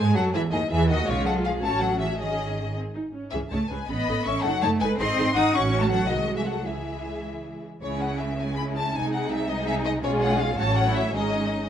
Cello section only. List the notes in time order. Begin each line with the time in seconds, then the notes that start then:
Already playing: G#3
0.16 F#3
0.34 E3
0.53 D#3
0.71 E3
0.89 D#3
1.08 C#3
1.26 F#3
1.45 F3
1.62 A3
1.81 F#3
1.99 E3
2.18 D#3
3.33 E3
3.51 A3
3.70 G#3
3.88 B3
4.25 C#4
4.44 F#3
4.62 A3
4.81 G#3
4.99 C4
5.35 D#4
5.53 C#4
5.80 A3
5.90 F#3
6.08 D#3
6.36 E3
6.45 F#3
6.65 E3
7.82 C#3
8.94 C3
10.03 B2
10.58 A2
11.14 G#2